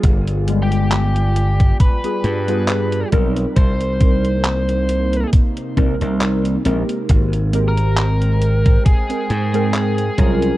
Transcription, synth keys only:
X:1
M:4/4
L:1/16
Q:"Swing 16ths" 1/4=68
K:Ab
V:1 name="Synth keys"
[G,=B,FA]2 [G,A,B,F]6- [G,A,B,F] [G,B,FA]2 [G,B,FA]3 [G,CE_B]2- | [G,CEB]2 [G,CEB]8 [G,CEB] [G,CEB]3 [A,CGB]2- | [A,CGB]2 [A,CGB]6- [A,CGB] [A,CBg]2 [A,CBg]3 [_G,DFB]2 |]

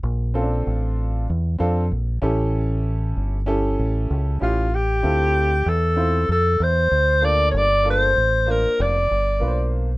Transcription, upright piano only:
X:1
M:4/4
L:1/16
Q:"Swing 16ths" 1/4=96
K:Dm
V:1 name="Upright piano"
z2 [C^CDFA]6 z2 [=CDFA]2 z2 [^CEGA]2- | [^CEGA]4- [CEGA] z [CEGA]6 [CEFG]2 z2 | [CEFA]2 z4 [CEFc]2 z6 [B,DFA]2 | z2 [B,DFA]2 z2 [B,DFc]2 z4 [B,DF=Bc]2 z2 |]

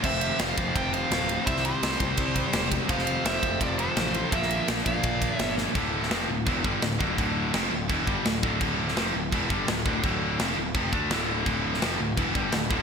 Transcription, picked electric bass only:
X:1
M:4/4
L:1/8
Q:1/4=168
K:Dm
V:1 name="Picked electric bass" clef=bass
F,,,2 F,,, F,,, F,,,2 D,,,2 | C,,2 C,, C,, C,,2 E,,,2 | F,,,2 F,,, F,,, F,,,2 A,,,2 | B,,,2 B,,, B,,, B,,,2 G,,,2 |
D,,,2 F,,, D,,, E,,, G,,, D,,, D,,, | D,,,2 F,,, D,,, E,,, G,,, D,,, D,,, | D,,,2 F,,, D,,, E,,, G,,, D,,, D,,, | D,,,2 F,,, D,,, F,,, D,, D,,,2 |
D,,,2 F,,, D,,, E,,, G,,, D,,, D,,, |]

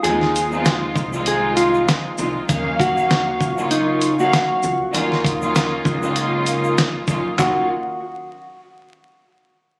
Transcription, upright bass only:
X:1
M:4/4
L:1/16
Q:"Swing 16ths" 1/4=98
K:Ebdor
V:1 name="Upright bass" clef=bass
E,,6 C,,6 z2 C,, z | E,,6 D,,6 z2 D,, z | E,,6 D,,6 z2 D,, z | E,,2 z12 z2 |]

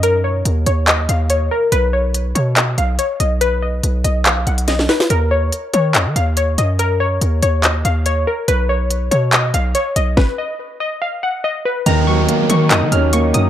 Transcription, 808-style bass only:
X:1
M:4/4
L:1/16
Q:1/4=142
K:Ebm
V:1 name="808-style bass" clef=bass
G,,4 E,,2 E,,4 E,,4 z2 | =B,,,6 =B,,4 B,,,2 z2 B,,,2- | =B,,,4 B,,,2 B,,,4 B,,,4 z2 | E,,4 z2 E,2 F,, E, E,,4 G,,2- |
G,,4 E,,2 E,,4 E,,4 z2 | =B,,,6 =B,,4 B,,,2 z2 B,,,2 | z16 | E,,4 z2 E,2 F,, E, E,,4 G,,2 |]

